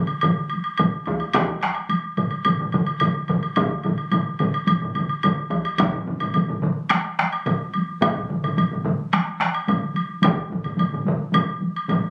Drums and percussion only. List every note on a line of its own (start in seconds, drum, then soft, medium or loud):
0.07 taiko high soft
0.07 high woodblock soft
0.21 taiko low-mid medium
0.21 taiko mid medium
0.21 taiko high medium
0.21 high woodblock soft
0.38 taiko high soft
0.50 taiko high soft
0.50 high woodblock soft
0.64 high woodblock soft
0.78 taiko low-mid medium
0.78 taiko mid medium
0.78 taiko high medium
0.78 high woodblock soft
1.06 taiko medium
1.06 taiko high soft
1.06 high woodblock soft
1.20 taiko high soft
1.20 high woodblock soft
1.33 taiko rim medium
1.33 taiko loud
1.33 taiko high medium
1.33 high woodblock medium
1.49 taiko high soft
1.61 taiko rim medium
1.61 taiko high soft
1.61 high woodblock soft
1.75 taiko high soft
1.75 high woodblock soft
1.89 taiko high medium
1.89 high woodblock soft
2.04 taiko high soft
2.17 taiko low-mid medium
2.17 taiko mid medium
2.17 taiko high soft
2.17 high woodblock soft
2.31 taiko high soft
2.31 high woodblock soft
2.45 taiko low-mid medium
2.45 taiko mid medium
2.45 taiko high medium
2.45 high woodblock soft
2.60 taiko low-mid medium
2.60 taiko mid medium
2.60 taiko high soft
2.72 taiko low-mid medium
2.72 taiko mid medium
2.72 taiko high soft
2.72 high woodblock soft
2.86 high woodblock soft
3.00 taiko low-mid medium
3.00 taiko mid medium
3.00 taiko high medium
3.00 high woodblock soft
3.17 taiko high soft
3.28 taiko low-mid medium
3.28 taiko mid medium
3.28 taiko high soft
3.28 high woodblock soft
3.43 taiko high soft
3.43 high woodblock soft
3.56 taiko medium
3.56 taiko low-mid medium
3.56 taiko mid medium
3.56 taiko high medium
3.56 high woodblock soft
3.70 taiko high soft
3.84 taiko low-mid medium
3.84 taiko mid medium
3.84 taiko high medium
3.84 high woodblock soft
3.98 taiko high soft
3.98 high woodblock soft
4.11 taiko low-mid medium
4.11 taiko mid medium
4.11 taiko high medium
4.11 high woodblock soft
4.26 taiko high soft
4.39 taiko low-mid medium
4.39 taiko mid medium
4.39 taiko high soft
4.39 high woodblock soft
4.53 taiko high soft
4.53 high woodblock soft
4.67 taiko low-mid medium
4.67 taiko mid medium
4.67 taiko high medium
4.67 high woodblock soft
4.81 taiko low-mid medium
4.81 taiko mid medium
4.81 taiko high soft
4.95 taiko low-mid medium
4.95 taiko mid medium
4.95 taiko high soft
4.95 high woodblock soft
5.09 high woodblock soft
5.23 taiko low-mid medium
5.23 taiko mid medium
5.23 taiko high medium
5.23 high woodblock soft
5.38 taiko high soft
5.51 taiko medium
5.51 taiko high soft
5.51 high woodblock soft
5.65 taiko high soft
5.65 high woodblock soft
5.78 taiko loud
5.78 taiko low-mid medium
5.78 taiko mid medium
5.78 taiko high medium
5.78 high woodblock medium
5.93 taiko low-mid medium
5.93 taiko mid medium
5.93 taiko high soft
6.06 taiko low-mid medium
6.06 taiko mid medium
6.06 taiko high medium
6.20 taiko low-mid medium
6.20 taiko mid medium
6.20 taiko high soft
6.20 high woodblock soft
6.34 taiko low-mid medium
6.34 taiko mid medium
6.34 taiko high medium
6.34 high woodblock soft
6.48 taiko low-mid medium
6.48 taiko mid medium
6.62 taiko low-mid medium
6.62 taiko mid medium
6.62 taiko high medium
6.77 taiko high soft
6.89 taiko rim medium
6.89 taiko high medium
6.89 high woodblock medium
7.05 taiko high soft
7.19 taiko rim medium
7.19 taiko high soft
7.33 high woodblock soft
7.46 taiko low-mid loud
7.46 taiko mid loud
7.46 taiko high medium
7.46 high woodblock soft
7.60 taiko high soft
7.74 taiko high medium
7.74 high woodblock soft
7.89 taiko high soft
8.01 taiko loud
8.01 taiko low-mid medium
8.01 taiko mid medium
8.01 taiko high medium
8.01 high woodblock medium
8.15 taiko low-mid medium
8.15 taiko mid medium
8.15 taiko high soft
8.29 taiko low-mid medium
8.29 taiko mid medium
8.29 taiko high medium
8.44 taiko low-mid medium
8.44 taiko mid medium
8.44 taiko high soft
8.44 high woodblock soft
8.57 taiko low-mid medium
8.57 taiko mid medium
8.57 taiko high medium
8.57 high woodblock soft
8.72 taiko low-mid medium
8.72 taiko mid medium
8.72 taiko high soft
8.85 taiko low-mid medium
8.85 taiko mid medium
8.85 taiko high medium
9.00 taiko high soft
9.13 taiko rim medium
9.13 taiko high medium
9.13 high woodblock medium
9.28 taiko high soft
9.41 taiko rim medium
9.41 taiko high soft
9.54 high woodblock soft
9.68 taiko low-mid loud
9.68 taiko mid loud
9.68 taiko high medium
9.68 high woodblock soft
9.82 taiko high soft
9.94 taiko high medium
9.94 high woodblock soft
10.09 taiko high soft
10.22 taiko loud
10.22 taiko low-mid medium
10.22 taiko mid loud
10.22 taiko high medium
10.22 high woodblock medium
10.36 taiko high soft
10.50 taiko low-mid medium
10.50 taiko mid medium
10.50 taiko high medium
10.63 taiko low-mid medium
10.63 taiko mid medium
10.63 taiko high soft
10.63 high woodblock soft
10.77 taiko low-mid medium
10.77 taiko mid medium
10.77 taiko high medium
10.77 high woodblock soft
10.91 taiko low-mid medium
10.91 taiko mid medium
10.91 taiko high soft
11.05 taiko low-mid loud
11.05 taiko mid medium
11.05 taiko high soft
11.18 taiko high soft
11.32 taiko low-mid loud
11.32 taiko mid loud
11.32 taiko high medium
11.32 high woodblock medium
11.46 taiko high soft
11.61 taiko high medium
11.76 high woodblock soft
11.88 taiko low-mid loud
11.88 taiko mid medium
11.88 taiko high medium
11.88 high woodblock soft
12.02 taiko high soft